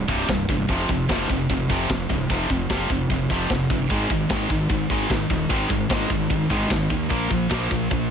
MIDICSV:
0, 0, Header, 1, 4, 480
1, 0, Start_track
1, 0, Tempo, 401338
1, 825, Time_signature, 4, 2, 24, 8
1, 9694, End_track
2, 0, Start_track
2, 0, Title_t, "Distorted electric guitar"
2, 0, Program_c, 0, 30
2, 97, Note_on_c, 0, 36, 82
2, 107, Note_on_c, 0, 43, 95
2, 113, Note_on_c, 0, 48, 98
2, 327, Note_off_c, 0, 36, 0
2, 332, Note_off_c, 0, 43, 0
2, 335, Note_off_c, 0, 48, 0
2, 347, Note_on_c, 0, 43, 81
2, 348, Note_on_c, 0, 36, 71
2, 562, Note_off_c, 0, 43, 0
2, 563, Note_off_c, 0, 36, 0
2, 593, Note_on_c, 0, 36, 68
2, 596, Note_on_c, 0, 43, 78
2, 805, Note_off_c, 0, 36, 0
2, 807, Note_off_c, 0, 43, 0
2, 821, Note_on_c, 0, 41, 81
2, 831, Note_on_c, 0, 48, 90
2, 838, Note_on_c, 0, 53, 96
2, 1049, Note_off_c, 0, 41, 0
2, 1054, Note_off_c, 0, 48, 0
2, 1057, Note_off_c, 0, 53, 0
2, 1070, Note_on_c, 0, 41, 70
2, 1072, Note_on_c, 0, 48, 83
2, 1284, Note_off_c, 0, 41, 0
2, 1285, Note_off_c, 0, 48, 0
2, 1304, Note_on_c, 0, 41, 84
2, 1314, Note_on_c, 0, 48, 100
2, 1323, Note_on_c, 0, 53, 98
2, 1531, Note_off_c, 0, 41, 0
2, 1536, Note_off_c, 0, 48, 0
2, 1540, Note_off_c, 0, 53, 0
2, 1559, Note_on_c, 0, 41, 68
2, 1564, Note_on_c, 0, 48, 86
2, 1768, Note_off_c, 0, 41, 0
2, 1771, Note_off_c, 0, 48, 0
2, 1803, Note_on_c, 0, 41, 75
2, 1809, Note_on_c, 0, 48, 74
2, 2011, Note_off_c, 0, 41, 0
2, 2014, Note_off_c, 0, 48, 0
2, 2032, Note_on_c, 0, 41, 81
2, 2038, Note_on_c, 0, 48, 84
2, 2045, Note_on_c, 0, 53, 88
2, 2254, Note_off_c, 0, 48, 0
2, 2255, Note_off_c, 0, 41, 0
2, 2262, Note_off_c, 0, 53, 0
2, 2267, Note_on_c, 0, 41, 73
2, 2268, Note_on_c, 0, 48, 83
2, 2483, Note_off_c, 0, 41, 0
2, 2483, Note_off_c, 0, 48, 0
2, 2507, Note_on_c, 0, 41, 65
2, 2513, Note_on_c, 0, 48, 75
2, 2723, Note_off_c, 0, 41, 0
2, 2726, Note_off_c, 0, 48, 0
2, 2750, Note_on_c, 0, 41, 89
2, 2757, Note_on_c, 0, 48, 98
2, 2763, Note_on_c, 0, 53, 97
2, 2974, Note_off_c, 0, 41, 0
2, 2977, Note_off_c, 0, 48, 0
2, 2980, Note_off_c, 0, 53, 0
2, 2997, Note_on_c, 0, 41, 66
2, 3002, Note_on_c, 0, 48, 78
2, 3208, Note_off_c, 0, 41, 0
2, 3210, Note_off_c, 0, 48, 0
2, 3231, Note_on_c, 0, 41, 84
2, 3236, Note_on_c, 0, 48, 91
2, 3242, Note_on_c, 0, 53, 95
2, 3454, Note_off_c, 0, 41, 0
2, 3457, Note_off_c, 0, 48, 0
2, 3460, Note_off_c, 0, 53, 0
2, 3483, Note_on_c, 0, 41, 71
2, 3492, Note_on_c, 0, 48, 69
2, 3691, Note_off_c, 0, 41, 0
2, 3695, Note_off_c, 0, 48, 0
2, 3723, Note_on_c, 0, 41, 74
2, 3725, Note_on_c, 0, 48, 76
2, 3931, Note_off_c, 0, 41, 0
2, 3932, Note_off_c, 0, 48, 0
2, 3945, Note_on_c, 0, 41, 87
2, 3953, Note_on_c, 0, 48, 88
2, 3962, Note_on_c, 0, 53, 92
2, 4171, Note_off_c, 0, 41, 0
2, 4175, Note_off_c, 0, 48, 0
2, 4180, Note_off_c, 0, 53, 0
2, 4189, Note_on_c, 0, 41, 73
2, 4192, Note_on_c, 0, 48, 79
2, 4404, Note_off_c, 0, 41, 0
2, 4405, Note_off_c, 0, 48, 0
2, 4427, Note_on_c, 0, 41, 60
2, 4430, Note_on_c, 0, 48, 75
2, 4642, Note_off_c, 0, 41, 0
2, 4644, Note_off_c, 0, 48, 0
2, 4665, Note_on_c, 0, 44, 90
2, 4674, Note_on_c, 0, 51, 86
2, 4678, Note_on_c, 0, 56, 91
2, 4891, Note_off_c, 0, 44, 0
2, 4896, Note_off_c, 0, 51, 0
2, 4898, Note_off_c, 0, 56, 0
2, 4910, Note_on_c, 0, 44, 67
2, 4917, Note_on_c, 0, 51, 71
2, 5124, Note_off_c, 0, 44, 0
2, 5128, Note_off_c, 0, 51, 0
2, 5151, Note_on_c, 0, 44, 80
2, 5153, Note_on_c, 0, 51, 88
2, 5164, Note_on_c, 0, 56, 101
2, 5371, Note_off_c, 0, 44, 0
2, 5375, Note_off_c, 0, 51, 0
2, 5380, Note_off_c, 0, 56, 0
2, 5385, Note_on_c, 0, 44, 72
2, 5389, Note_on_c, 0, 51, 88
2, 5601, Note_off_c, 0, 44, 0
2, 5603, Note_off_c, 0, 51, 0
2, 5620, Note_on_c, 0, 44, 79
2, 5622, Note_on_c, 0, 51, 86
2, 5839, Note_off_c, 0, 44, 0
2, 5840, Note_off_c, 0, 51, 0
2, 5867, Note_on_c, 0, 44, 73
2, 5872, Note_on_c, 0, 51, 83
2, 5878, Note_on_c, 0, 56, 91
2, 6092, Note_off_c, 0, 44, 0
2, 6094, Note_off_c, 0, 51, 0
2, 6097, Note_off_c, 0, 56, 0
2, 6105, Note_on_c, 0, 44, 72
2, 6106, Note_on_c, 0, 51, 84
2, 6321, Note_off_c, 0, 44, 0
2, 6322, Note_off_c, 0, 51, 0
2, 6338, Note_on_c, 0, 44, 66
2, 6342, Note_on_c, 0, 51, 86
2, 6557, Note_off_c, 0, 44, 0
2, 6560, Note_off_c, 0, 51, 0
2, 6571, Note_on_c, 0, 44, 89
2, 6584, Note_on_c, 0, 51, 92
2, 6591, Note_on_c, 0, 56, 93
2, 6804, Note_off_c, 0, 44, 0
2, 6806, Note_off_c, 0, 51, 0
2, 6813, Note_off_c, 0, 56, 0
2, 6818, Note_on_c, 0, 44, 64
2, 6821, Note_on_c, 0, 51, 76
2, 7037, Note_off_c, 0, 44, 0
2, 7039, Note_off_c, 0, 51, 0
2, 7060, Note_on_c, 0, 44, 84
2, 7068, Note_on_c, 0, 51, 85
2, 7073, Note_on_c, 0, 56, 90
2, 7288, Note_off_c, 0, 44, 0
2, 7292, Note_off_c, 0, 51, 0
2, 7294, Note_off_c, 0, 56, 0
2, 7301, Note_on_c, 0, 44, 75
2, 7304, Note_on_c, 0, 51, 85
2, 7519, Note_off_c, 0, 44, 0
2, 7520, Note_off_c, 0, 51, 0
2, 7539, Note_on_c, 0, 44, 65
2, 7543, Note_on_c, 0, 51, 82
2, 7757, Note_off_c, 0, 44, 0
2, 7760, Note_off_c, 0, 51, 0
2, 7776, Note_on_c, 0, 44, 81
2, 7787, Note_on_c, 0, 51, 97
2, 7795, Note_on_c, 0, 56, 101
2, 8006, Note_off_c, 0, 44, 0
2, 8011, Note_off_c, 0, 51, 0
2, 8015, Note_off_c, 0, 56, 0
2, 8026, Note_on_c, 0, 44, 78
2, 8032, Note_on_c, 0, 51, 83
2, 8241, Note_off_c, 0, 44, 0
2, 8244, Note_off_c, 0, 51, 0
2, 8255, Note_on_c, 0, 44, 69
2, 8263, Note_on_c, 0, 51, 83
2, 8475, Note_off_c, 0, 44, 0
2, 8479, Note_off_c, 0, 51, 0
2, 8490, Note_on_c, 0, 46, 86
2, 8498, Note_on_c, 0, 53, 85
2, 8507, Note_on_c, 0, 58, 92
2, 8714, Note_off_c, 0, 46, 0
2, 8717, Note_off_c, 0, 53, 0
2, 8729, Note_on_c, 0, 46, 70
2, 8731, Note_off_c, 0, 58, 0
2, 8732, Note_on_c, 0, 53, 88
2, 8952, Note_off_c, 0, 46, 0
2, 8953, Note_off_c, 0, 53, 0
2, 8966, Note_on_c, 0, 46, 85
2, 8978, Note_on_c, 0, 53, 91
2, 8982, Note_on_c, 0, 58, 94
2, 9200, Note_off_c, 0, 46, 0
2, 9206, Note_off_c, 0, 53, 0
2, 9208, Note_off_c, 0, 58, 0
2, 9218, Note_on_c, 0, 46, 69
2, 9223, Note_on_c, 0, 53, 87
2, 9436, Note_off_c, 0, 46, 0
2, 9439, Note_off_c, 0, 53, 0
2, 9456, Note_on_c, 0, 46, 76
2, 9463, Note_on_c, 0, 53, 88
2, 9676, Note_off_c, 0, 46, 0
2, 9679, Note_off_c, 0, 53, 0
2, 9694, End_track
3, 0, Start_track
3, 0, Title_t, "Fingered electric bass"
3, 0, Program_c, 1, 33
3, 105, Note_on_c, 1, 24, 81
3, 303, Note_off_c, 1, 24, 0
3, 344, Note_on_c, 1, 24, 80
3, 543, Note_off_c, 1, 24, 0
3, 586, Note_on_c, 1, 31, 94
3, 783, Note_off_c, 1, 31, 0
3, 827, Note_on_c, 1, 29, 85
3, 1024, Note_off_c, 1, 29, 0
3, 1066, Note_on_c, 1, 29, 85
3, 1264, Note_off_c, 1, 29, 0
3, 1310, Note_on_c, 1, 29, 89
3, 1506, Note_off_c, 1, 29, 0
3, 1552, Note_on_c, 1, 29, 87
3, 1747, Note_off_c, 1, 29, 0
3, 1796, Note_on_c, 1, 29, 83
3, 1990, Note_off_c, 1, 29, 0
3, 2036, Note_on_c, 1, 29, 80
3, 2230, Note_off_c, 1, 29, 0
3, 2272, Note_on_c, 1, 29, 84
3, 2468, Note_off_c, 1, 29, 0
3, 2510, Note_on_c, 1, 24, 86
3, 2706, Note_off_c, 1, 24, 0
3, 2753, Note_on_c, 1, 29, 88
3, 2948, Note_off_c, 1, 29, 0
3, 2994, Note_on_c, 1, 29, 82
3, 3189, Note_off_c, 1, 29, 0
3, 3229, Note_on_c, 1, 29, 83
3, 3426, Note_off_c, 1, 29, 0
3, 3469, Note_on_c, 1, 29, 90
3, 3666, Note_off_c, 1, 29, 0
3, 3712, Note_on_c, 1, 29, 81
3, 3908, Note_off_c, 1, 29, 0
3, 3949, Note_on_c, 1, 29, 73
3, 4146, Note_off_c, 1, 29, 0
3, 4185, Note_on_c, 1, 29, 80
3, 4384, Note_off_c, 1, 29, 0
3, 4430, Note_on_c, 1, 31, 86
3, 4626, Note_off_c, 1, 31, 0
3, 4668, Note_on_c, 1, 32, 85
3, 4865, Note_off_c, 1, 32, 0
3, 4908, Note_on_c, 1, 32, 85
3, 5105, Note_off_c, 1, 32, 0
3, 5143, Note_on_c, 1, 32, 84
3, 5342, Note_off_c, 1, 32, 0
3, 5386, Note_on_c, 1, 32, 84
3, 5584, Note_off_c, 1, 32, 0
3, 5625, Note_on_c, 1, 32, 84
3, 5823, Note_off_c, 1, 32, 0
3, 5863, Note_on_c, 1, 32, 74
3, 6062, Note_off_c, 1, 32, 0
3, 6104, Note_on_c, 1, 32, 85
3, 6303, Note_off_c, 1, 32, 0
3, 6338, Note_on_c, 1, 27, 90
3, 6539, Note_off_c, 1, 27, 0
3, 6580, Note_on_c, 1, 32, 90
3, 6780, Note_off_c, 1, 32, 0
3, 6818, Note_on_c, 1, 32, 86
3, 7019, Note_off_c, 1, 32, 0
3, 7057, Note_on_c, 1, 32, 84
3, 7258, Note_off_c, 1, 32, 0
3, 7298, Note_on_c, 1, 32, 89
3, 7498, Note_off_c, 1, 32, 0
3, 7544, Note_on_c, 1, 32, 89
3, 7742, Note_off_c, 1, 32, 0
3, 7775, Note_on_c, 1, 32, 82
3, 7977, Note_off_c, 1, 32, 0
3, 8016, Note_on_c, 1, 32, 89
3, 8217, Note_off_c, 1, 32, 0
3, 8260, Note_on_c, 1, 39, 90
3, 8460, Note_off_c, 1, 39, 0
3, 8501, Note_on_c, 1, 34, 91
3, 8700, Note_off_c, 1, 34, 0
3, 8746, Note_on_c, 1, 34, 85
3, 8943, Note_off_c, 1, 34, 0
3, 8979, Note_on_c, 1, 34, 86
3, 9179, Note_off_c, 1, 34, 0
3, 9224, Note_on_c, 1, 34, 90
3, 9421, Note_off_c, 1, 34, 0
3, 9465, Note_on_c, 1, 34, 82
3, 9662, Note_off_c, 1, 34, 0
3, 9694, End_track
4, 0, Start_track
4, 0, Title_t, "Drums"
4, 100, Note_on_c, 9, 36, 77
4, 220, Note_off_c, 9, 36, 0
4, 342, Note_on_c, 9, 53, 61
4, 343, Note_on_c, 9, 36, 110
4, 353, Note_on_c, 9, 38, 107
4, 462, Note_off_c, 9, 36, 0
4, 462, Note_off_c, 9, 53, 0
4, 472, Note_off_c, 9, 38, 0
4, 583, Note_on_c, 9, 36, 91
4, 703, Note_off_c, 9, 36, 0
4, 818, Note_on_c, 9, 53, 66
4, 825, Note_on_c, 9, 36, 106
4, 938, Note_off_c, 9, 53, 0
4, 944, Note_off_c, 9, 36, 0
4, 1065, Note_on_c, 9, 36, 76
4, 1185, Note_off_c, 9, 36, 0
4, 1307, Note_on_c, 9, 36, 117
4, 1307, Note_on_c, 9, 53, 68
4, 1317, Note_on_c, 9, 38, 115
4, 1426, Note_off_c, 9, 53, 0
4, 1427, Note_off_c, 9, 36, 0
4, 1437, Note_off_c, 9, 38, 0
4, 1549, Note_on_c, 9, 36, 82
4, 1669, Note_off_c, 9, 36, 0
4, 1790, Note_on_c, 9, 36, 100
4, 1791, Note_on_c, 9, 53, 70
4, 1910, Note_off_c, 9, 36, 0
4, 1910, Note_off_c, 9, 53, 0
4, 2030, Note_on_c, 9, 36, 83
4, 2150, Note_off_c, 9, 36, 0
4, 2268, Note_on_c, 9, 53, 68
4, 2269, Note_on_c, 9, 36, 102
4, 2279, Note_on_c, 9, 38, 110
4, 2387, Note_off_c, 9, 53, 0
4, 2389, Note_off_c, 9, 36, 0
4, 2398, Note_off_c, 9, 38, 0
4, 2511, Note_on_c, 9, 36, 82
4, 2630, Note_off_c, 9, 36, 0
4, 2748, Note_on_c, 9, 53, 75
4, 2749, Note_on_c, 9, 36, 106
4, 2867, Note_off_c, 9, 53, 0
4, 2869, Note_off_c, 9, 36, 0
4, 2989, Note_on_c, 9, 36, 77
4, 3109, Note_off_c, 9, 36, 0
4, 3225, Note_on_c, 9, 53, 72
4, 3229, Note_on_c, 9, 36, 112
4, 3236, Note_on_c, 9, 38, 115
4, 3344, Note_off_c, 9, 53, 0
4, 3348, Note_off_c, 9, 36, 0
4, 3355, Note_off_c, 9, 38, 0
4, 3468, Note_on_c, 9, 36, 80
4, 3588, Note_off_c, 9, 36, 0
4, 3704, Note_on_c, 9, 53, 62
4, 3708, Note_on_c, 9, 36, 101
4, 3824, Note_off_c, 9, 53, 0
4, 3827, Note_off_c, 9, 36, 0
4, 3947, Note_on_c, 9, 36, 79
4, 4066, Note_off_c, 9, 36, 0
4, 4182, Note_on_c, 9, 53, 62
4, 4186, Note_on_c, 9, 36, 110
4, 4193, Note_on_c, 9, 38, 95
4, 4302, Note_off_c, 9, 53, 0
4, 4306, Note_off_c, 9, 36, 0
4, 4313, Note_off_c, 9, 38, 0
4, 4426, Note_on_c, 9, 36, 85
4, 4546, Note_off_c, 9, 36, 0
4, 4662, Note_on_c, 9, 53, 67
4, 4666, Note_on_c, 9, 36, 105
4, 4781, Note_off_c, 9, 53, 0
4, 4785, Note_off_c, 9, 36, 0
4, 4904, Note_on_c, 9, 36, 77
4, 5024, Note_off_c, 9, 36, 0
4, 5138, Note_on_c, 9, 53, 68
4, 5142, Note_on_c, 9, 36, 118
4, 5149, Note_on_c, 9, 38, 115
4, 5257, Note_off_c, 9, 53, 0
4, 5262, Note_off_c, 9, 36, 0
4, 5268, Note_off_c, 9, 38, 0
4, 5382, Note_on_c, 9, 36, 80
4, 5502, Note_off_c, 9, 36, 0
4, 5613, Note_on_c, 9, 53, 67
4, 5619, Note_on_c, 9, 36, 111
4, 5733, Note_off_c, 9, 53, 0
4, 5739, Note_off_c, 9, 36, 0
4, 5860, Note_on_c, 9, 36, 79
4, 5980, Note_off_c, 9, 36, 0
4, 6100, Note_on_c, 9, 36, 101
4, 6102, Note_on_c, 9, 53, 67
4, 6112, Note_on_c, 9, 38, 107
4, 6220, Note_off_c, 9, 36, 0
4, 6221, Note_off_c, 9, 53, 0
4, 6232, Note_off_c, 9, 38, 0
4, 6339, Note_on_c, 9, 36, 92
4, 6458, Note_off_c, 9, 36, 0
4, 6577, Note_on_c, 9, 53, 72
4, 6578, Note_on_c, 9, 36, 114
4, 6696, Note_off_c, 9, 53, 0
4, 6698, Note_off_c, 9, 36, 0
4, 6818, Note_on_c, 9, 36, 81
4, 6937, Note_off_c, 9, 36, 0
4, 7056, Note_on_c, 9, 36, 121
4, 7057, Note_on_c, 9, 53, 72
4, 7068, Note_on_c, 9, 38, 117
4, 7176, Note_off_c, 9, 36, 0
4, 7177, Note_off_c, 9, 53, 0
4, 7187, Note_off_c, 9, 38, 0
4, 7297, Note_on_c, 9, 36, 86
4, 7417, Note_off_c, 9, 36, 0
4, 7537, Note_on_c, 9, 36, 113
4, 7537, Note_on_c, 9, 53, 70
4, 7656, Note_off_c, 9, 36, 0
4, 7657, Note_off_c, 9, 53, 0
4, 7776, Note_on_c, 9, 36, 80
4, 7896, Note_off_c, 9, 36, 0
4, 8016, Note_on_c, 9, 36, 102
4, 8018, Note_on_c, 9, 53, 70
4, 8029, Note_on_c, 9, 38, 109
4, 8136, Note_off_c, 9, 36, 0
4, 8138, Note_off_c, 9, 53, 0
4, 8149, Note_off_c, 9, 38, 0
4, 8256, Note_on_c, 9, 36, 81
4, 8376, Note_off_c, 9, 36, 0
4, 8494, Note_on_c, 9, 53, 66
4, 8497, Note_on_c, 9, 36, 107
4, 8613, Note_off_c, 9, 53, 0
4, 8616, Note_off_c, 9, 36, 0
4, 8739, Note_on_c, 9, 36, 80
4, 8859, Note_off_c, 9, 36, 0
4, 8979, Note_on_c, 9, 53, 70
4, 8980, Note_on_c, 9, 36, 113
4, 8990, Note_on_c, 9, 38, 110
4, 9099, Note_off_c, 9, 53, 0
4, 9100, Note_off_c, 9, 36, 0
4, 9109, Note_off_c, 9, 38, 0
4, 9222, Note_on_c, 9, 36, 83
4, 9341, Note_off_c, 9, 36, 0
4, 9461, Note_on_c, 9, 53, 60
4, 9462, Note_on_c, 9, 36, 108
4, 9580, Note_off_c, 9, 53, 0
4, 9582, Note_off_c, 9, 36, 0
4, 9694, End_track
0, 0, End_of_file